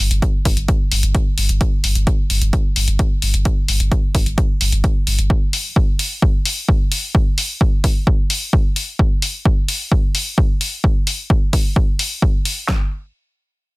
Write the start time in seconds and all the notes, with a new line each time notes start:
0.00 G1
0.11 G1, closed hi-hat
0.22 kick, closed hi-hat
0.45 G1, kick, open hi-hat
0.57 G1, closed hi-hat
0.68 kick, closed hi-hat
0.92 G1, open hi-hat
1.03 G1, closed hi-hat
1.15 kick, closed hi-hat
1.38 G1, open hi-hat
1.49 G1, closed hi-hat
1.61 kick, closed hi-hat
1.84 G1, open hi-hat
1.95 G1, closed hi-hat
2.07 kick, closed hi-hat
2.30 G1, open hi-hat
2.42 G1, closed hi-hat
2.53 kick, closed hi-hat
2.76 G1, open hi-hat
2.88 G1, closed hi-hat
2.99 kick, closed hi-hat
3.22 G1, open hi-hat
3.34 G1, closed hi-hat
3.45 kick, closed hi-hat
3.68 G1, open hi-hat
3.80 G1, closed hi-hat
3.92 kick, closed hi-hat
4.15 G1, kick, open hi-hat
4.26 G1, closed hi-hat
4.38 kick, closed hi-hat
4.61 G1, open hi-hat
4.72 G1, closed hi-hat
4.84 kick, closed hi-hat
5.07 G1, open hi-hat
5.19 G1, closed hi-hat
5.30 kick
5.53 open hi-hat
5.76 kick
5.99 open hi-hat
6.22 kick
6.45 open hi-hat
6.69 kick
6.92 open hi-hat
7.15 kick
7.38 open hi-hat
7.61 kick
7.84 kick, open hi-hat
8.07 kick
8.30 open hi-hat
8.53 kick
8.76 open hi-hat
8.99 kick
9.22 open hi-hat
9.45 kick
9.68 open hi-hat
9.92 kick
10.15 open hi-hat
10.38 kick
10.61 open hi-hat
10.84 kick
11.07 open hi-hat
11.30 kick
11.53 kick, open hi-hat
11.76 kick
11.99 open hi-hat
12.22 kick
12.45 open hi-hat
12.69 kick, snare, clap